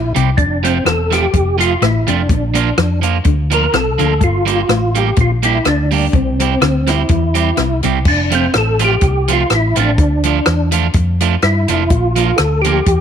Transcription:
Already playing: A#1 E4
0.15 C2 C3 G3 C4 E4 G4, closed hi-hat
0.37 F1 F2 D4, kick, closed hi-hat
0.63 F3 A3 C4 F4, closed hi-hat
0.85 E1 E2 A4, cross-stick, closed hi-hat
1.11 F3 A3 C4 F4 G4, cross-stick, closed hi-hat
1.33 F1 F2, muted clean electric guitar stroke, kick, closed hi-hat
1.58 F3 A3 C4 F4, closed hi-hat
1.82 A1 A2 E4, cross-stick, closed hi-hat
2.07 F1 F2 F3 A3 C4 D4 F4, closed hi-hat
2.29 A#1 A#2, kick, closed hi-hat
2.54 F3 A#3 D4 F4, closed hi-hat
2.77 F2 F3, cross-stick, closed hi-hat
3.02 F3 A#3 D4 F4, closed hi-hat
3.24 D2 D3, muted clean electric guitar stroke, kick, closed hi-hat
3.51 F3 A#3 D4 F4 A#4, closed hi-hat
3.73 C2 C3 A4, muted clean electric guitar stroke, cross-stick, closed hi-hat
3.98 D2 D3 F3 A#3 D4 F4, closed hi-hat
4.21 G1 G2 F4, kick, closed hi-hat
4.46 G3 A#3 D4 G4, closed hi-hat
4.69 A1 A2, cross-stick, closed hi-hat
4.95 G3 A#3 D4 G4, closed hi-hat
5.16 A#1 A#2, muted clean electric guitar stroke, kick, closed hi-hat
5.21 F4
5.43 G3 A#3 D4 E4 G4, closed hi-hat
5.65 D2 D3 D4, cross-stick, closed hi-hat
5.91 G3 A#3 D4 G4, open hi-hat
6.13 C2 C3 C4, kick, closed hi-hat
6.40 G3 C4 E4 G4, closed hi-hat
6.61 D2 D3, cross-stick, closed hi-hat
6.87 G3 C4 E4 G4, cross-stick, closed hi-hat
7.09 E2 E3, muted clean electric guitar stroke, kick, closed hi-hat
7.35 G3 C4 E4 G4, closed hi-hat
7.57 C2 C3, cross-stick, closed hi-hat
7.83 C2 C3 G3 C4 E4 G4, closed hi-hat
8.05 F1 D4, kick, crash
8.31 F3 A3 C4 F4, closed hi-hat
8.35 C4
8.53 A1, cross-stick, closed hi-hat
8.58 A4
8.79 F3 A3 C4 F4, closed hi-hat
8.84 G4
9.01 C2, muted clean electric guitar stroke, kick, closed hi-hat
9.28 F3 A3 C4 F4, closed hi-hat
9.33 F4
9.50 A1, cross-stick, closed hi-hat
9.55 E4
9.76 A1 F3 A3 C4 F4, closed hi-hat
9.80 D4
9.98 D2, kick, closed hi-hat
10.23 F3 A3 D4 F4, closed hi-hat
10.45 E2, cross-stick, closed hi-hat
10.72 F3 A3 D4 F4, closed hi-hat
10.93 F2, muted clean electric guitar stroke, kick, closed hi-hat
11.20 F3 A3 D4 F4, closed hi-hat
11.42 G2 E4, cross-stick, closed hi-hat
11.68 F1 F3 A3 D4 F4, closed hi-hat
11.90 A#1 F4, kick, closed hi-hat
12.16 F3 A#3 D4 F4, closed hi-hat
12.36 D2 A4, cross-stick, closed hi-hat
12.62 F3 A#3 G4, closed hi-hat
12.66 D4 F4
12.86 E2, muted clean electric guitar stroke, kick, closed hi-hat

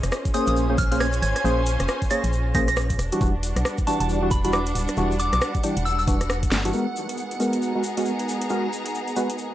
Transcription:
Already playing: C#4 F4 G#4 C5 D#5
0.00 F1 C5, cross-stick, closed hi-hat, shaker
0.12 cross-stick, shaker
0.25 kick, closed hi-hat, shaker
0.34 A#3 C#4 G#4 C5 D#6, closed hi-hat, shaker
0.47 A#1 D#6, closed hi-hat, shaker
0.56 shaker
0.62 G#5
0.70 A#3 C#4 G#4 C5
0.78 A#1 F6, kick, closed hi-hat, shaker
0.91 A#3 C#4 G#4 C5 F6, closed hi-hat, shaker
1.00 G#6, cross-stick, shaker
1.12 closed hi-hat, shaker
1.22 G#1 G#6, closed hi-hat, shaker
1.36 G#6, cross-stick, closed hi-hat, shaker
1.44 A#1 A#3 C#4 G#4 C5, shaker
1.66 closed hi-hat, shaker
1.80 F1, cross-stick, closed hi-hat, shaker
1.88 cross-stick, shaker
2.02 kick, closed hi-hat, shaker
2.10 A#3 C#4 G#4 C#5 A#6, closed hi-hat, shaker
2.24 A#1, closed hi-hat, shaker
2.33 shaker
2.55 A#1 A#3 C#4 G#4 C5 A#6, kick, closed hi-hat, shaker
2.68 A#6, cross-stick, closed hi-hat, shaker
2.76 cross-stick, shaker
2.90 kick, closed hi-hat, shaker
2.99 E1 G3 D4 F#4 B4, cross-stick, closed hi-hat, shaker
3.12 E3 G3 D4 F#4, closed hi-hat, shaker
3.21 E1 E3 G3 D4 F#4, kick, shaker
3.34 G3
3.43 F#5, closed hi-hat, shaker
3.56 B1, cross-stick, closed hi-hat, shaker
3.65 cross-stick, shaker
3.78 kick, closed hi-hat, shaker
3.87 E3 G3 D4 F#4 A5, closed hi-hat, shaker
4.00 E1 A5, closed hi-hat, shaker
4.09 shaker
4.22 E3 G3 D4 F#4
4.31 E1 B5, kick, closed hi-hat, shaker
4.44 E3 G3 D4 F#4 B5, closed hi-hat, shaker
4.53 D6, cross-stick, shaker
4.66 closed hi-hat, shaker
4.75 D1, closed hi-hat, shaker
4.88 cross-stick, closed hi-hat, shaker
4.97 E1 E3 G3 D4 F#4, shaker
5.12 shaker
5.19 D6, closed hi-hat, shaker
5.33 B1 D6, cross-stick, closed hi-hat, shaker
5.41 cross-stick, shaker
5.55 kick, closed hi-hat, shaker
5.63 E3 G3 D4 G4, closed hi-hat, shaker
5.77 E1, closed hi-hat, shaker
5.85 E6, shaker
5.99 E6, shaker
6.08 E1 E3 G3 D4 F#4, kick, closed hi-hat, shaker
6.21 cross-stick, closed hi-hat, shaker
6.30 cross-stick, shaker
6.43 kick, closed hi-hat, shaker
6.52 G1, snare, closed hi-hat, shaker
6.65 E3 G3 D4 F#4, closed hi-hat, shaker
6.73 G#3 B3 D#4 F#4 A#4, shaker
6.96 shaker
7.04 G#4
7.09 closed hi-hat, shaker
7.17 shaker
7.31 closed hi-hat, shaker
7.40 G#3 B3 F#4 A#4, closed hi-hat, shaker
7.48 A#5
7.53 closed hi-hat, shaker
7.62 shaker
7.75 G#3 B3 F#4 A#4
7.83 shaker
7.97 G#3 B3 F#4 A#4, closed hi-hat, shaker
8.05 shaker
8.19 closed hi-hat, shaker
8.29 shaker
8.41 closed hi-hat, shaker
8.50 G#3 B3 F#4 A#4, shaker
8.73 shaker
8.86 closed hi-hat, shaker
8.95 shaker
9.08 closed hi-hat, shaker
9.16 G#3 B3 F#4 B4, closed hi-hat, shaker
9.30 closed hi-hat, shaker
9.38 shaker

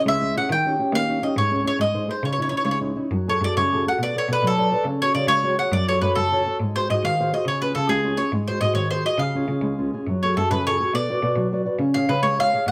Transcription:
Already playing: C#4 E4 G#4
0.05 C#3 G#3 E5
0.21 C#4 E4 G#4
0.36 C#4 E4 G#4 F#5
0.50 D#3 G5
0.65 C#4 D#4 G4
0.79 C#4 D#4 G4
0.92 D#3 A#3 F5
1.09 C#4 D#4 G4
1.22 C#4 D#4 G4 D#5
1.36 G#2 G#3 C#5
1.51 C#4 E4 G#4
1.64 C#4 E4 G#4 C#5
1.80 G#2 G#3 D#5
1.94 D#4 G#4 C5
2.08 D#4 G#4 C5
2.22 C#3 C#5
2.32 C#5
2.38 C#4 D#4 E4
2.42 C#5
2.49 C#4 D#4 E4 C#5
2.57 C#5
2.65 C#3 G#3 C#5
2.71 C#5
2.81 C#4 D#4 E4
2.96 C#4 D#4 E4
3.11 F#2 F#3
3.27 F#4 G#4 A4 C#5
3.41 F#2 F#4 G#4 A4 D5
3.57 F#2 C#3 C#5
3.73 F#4 G#4 A4
3.87 F#4 G#4 A4 F#5
3.99 B2 B3
4.03 D5
4.16 A4 B4 C#5 D5
4.28 B2 A4 B4 D5
4.33 B4
4.42 B2 F#3
4.47 A4
4.58 A4 B4 D5
4.72 A4 B4 D5
4.85 C#3 C#4
5.01 F#4 G#4 C#5
5.15 C#3 F#4 G#4 C#5 D5
5.28 C#3 G#3 C#5
5.43 F#4 G#4 C#5
5.58 F#4 G#4 C#5 F#5
5.72 F#2 F#3 D5
5.88 F#4 A4 C#5
6.01 F#2 F#4 A4 B4 C#5
6.15 F#2 C#3 A4
6.32 F#4 A4 C#5
6.46 F#4 A4 C#5
6.60 G#2 G#3
6.76 F#4 G#4 C5
6.90 G#2 F#4 G#4 C5 D#5
7.03 G#2 D#3 F5
7.20 F#4 G#4 C5
7.33 F#4 G#4 C5 D#5
7.46 C#3 C#5
7.62 C#4 F4 G#4 B4
7.75 C#3 C#4 F4 G#4 A4
7.88 C#3 G#3 G#4
8.04 C#4 F4 G#4
8.17 C#4 F4 G#4 C#5
8.32 G#2 G#3
8.48 F#4 G#4 C5
8.61 G#2 F#4 G#4 C5 D#5
8.74 G#2 D#3 C#5
8.90 F#4 G#4 C5
9.05 F#4 G#4 C5 D#5
9.18 C#3 F5
9.35 C#4 F4 G#4
9.48 C#3 C#4 F4 G#4
9.62 C#3 G#3
9.78 C#4 F4 G#4
9.93 C#4 F4 G#4
10.07 F#2 F#3
10.23 F#4 G#4 A4 C#5
10.37 F#2 F#4 G#4 A4
10.51 F#2 C#3 B4
10.67 F#4 G#4 A4 C#5
10.80 F#4 G#4 A4
10.94 B2 B3 D5
11.10 F#4 B4 D5
11.23 B2 F#4 B4 D5
11.36 B2 F#3
11.52 F#4 B4 D5
11.65 F#4 B4 D5
11.79 C#3 C#4
11.94 G#4 C#5 F5
12.09 C#3 G#4 B4 C#5 F5
12.22 C#3 G#3 C#5
12.38 G#4 C#5 F5
12.53 G#4 C#5 F5
12.66 G#2 G#3 F#5

